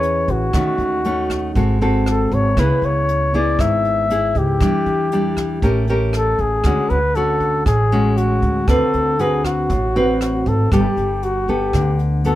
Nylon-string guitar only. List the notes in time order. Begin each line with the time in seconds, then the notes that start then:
Already playing: E3 C#4 G#4 B4
0.54 D#3 A3 C#4 F#4
1.05 A3 C#4 F#4
1.56 G#3 C4 F#4 A4
1.81 C4 F#4 A4
2.58 C#3 B3 E4 G#4
3.34 B3 E4 G#4
3.59 G#2
4.11 B3 E4 G#4
4.61 E3 G3 D4
5.13 G3 D4
5.63 A3 C#4 G4 A#4
5.89 C#4 G4 A#4
6.65 D3 G#3 C#4 F#4
7.16 C#4 F#4
7.66 A2
7.92 G#3 C#4 F#4
8.68 D3 C4 F#4 B4
9.19 C4 F#4 B4
9.70 A2
9.96 C4 F#4 B4
10.72 G3 B3 A4
11.49 B3 A4
11.74 D3
12.25 B3 F#4 A4